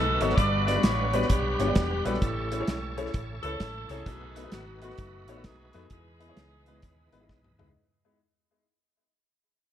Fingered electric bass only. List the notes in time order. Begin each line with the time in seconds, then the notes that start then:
Already playing: B1
0.20 G#1
0.38 G1
0.83 A1
1.30 B1
1.59 G1
1.76 E1
2.05 A#1
2.22 A1
2.68 B1
3.14 A1
3.44 C#2
3.60 A1
3.90 C2
4.06 B1
4.52 G#1
4.99 F#1
5.28 A1
5.75 F2
5.90 E2
6.37 C#2
6.83 D#2
7.12 G#1
7.29 B1
7.59 C#2